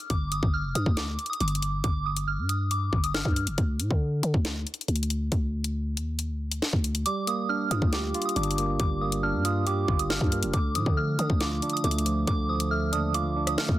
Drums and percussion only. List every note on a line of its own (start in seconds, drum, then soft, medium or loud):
0.10 kick loud
0.10 closed hi-hat medium
0.32 closed hi-hat medium
0.43 kick loud
0.75 closed hi-hat medium
0.86 kick medium
0.97 snare loud
0.97 closed hi-hat medium
1.19 closed hi-hat soft
1.26 closed hi-hat soft
1.33 closed hi-hat medium
1.41 closed hi-hat medium
1.48 closed hi-hat medium
1.55 closed hi-hat medium
1.62 closed hi-hat medium
1.84 kick loud
1.84 closed hi-hat medium
2.17 closed hi-hat medium
2.49 closed hi-hat medium
2.71 closed hi-hat medium
2.93 kick medium
3.04 closed hi-hat medium
3.14 snare loud
3.25 kick medium
3.36 closed hi-hat medium
3.47 closed hi-hat medium
3.58 kick loud
3.58 closed hi-hat medium
3.80 closed hi-hat medium
3.91 kick loud
4.23 closed hi-hat medium
4.34 kick medium
4.45 snare loud
4.45 closed hi-hat medium
4.67 closed hi-hat soft
4.74 closed hi-hat soft
4.81 closed hi-hat medium
4.88 closed hi-hat medium
4.96 closed hi-hat medium
5.03 closed hi-hat medium
5.10 closed hi-hat medium
5.32 kick loud
5.32 closed hi-hat medium
5.64 closed hi-hat medium
5.97 closed hi-hat medium
6.19 closed hi-hat medium
6.52 closed hi-hat medium
6.62 snare loud
6.73 kick medium
6.84 closed hi-hat medium
6.95 closed hi-hat medium
7.06 closed hi-hat medium
7.27 closed hi-hat medium
7.71 closed hi-hat medium
7.82 kick medium
7.93 snare loud
7.93 closed hi-hat medium
8.14 closed hi-hat soft
8.22 closed hi-hat soft
8.29 closed hi-hat medium
8.36 closed hi-hat medium
8.43 closed hi-hat medium
8.51 closed hi-hat medium
8.58 closed hi-hat medium
8.80 kick loud
8.80 closed hi-hat medium
9.12 closed hi-hat medium
9.45 closed hi-hat medium
9.67 closed hi-hat medium
9.88 kick medium
9.99 closed hi-hat medium
10.10 snare loud
10.21 kick medium
10.32 closed hi-hat medium
10.43 closed hi-hat medium
10.54 kick loud
10.54 closed hi-hat medium
10.75 closed hi-hat medium
10.86 kick loud
11.19 closed hi-hat medium
11.30 kick medium
11.41 snare loud
11.41 closed hi-hat medium
11.62 closed hi-hat soft
11.70 closed hi-hat soft
11.77 closed hi-hat medium
11.84 closed hi-hat medium
11.91 closed hi-hat medium
11.98 closed hi-hat medium
12.06 closed hi-hat medium
12.27 kick loud
12.27 closed hi-hat medium
12.60 closed hi-hat medium
12.93 closed hi-hat medium
13.14 closed hi-hat medium
13.47 cross-stick medium
13.47 closed hi-hat medium
13.58 snare loud
13.69 kick medium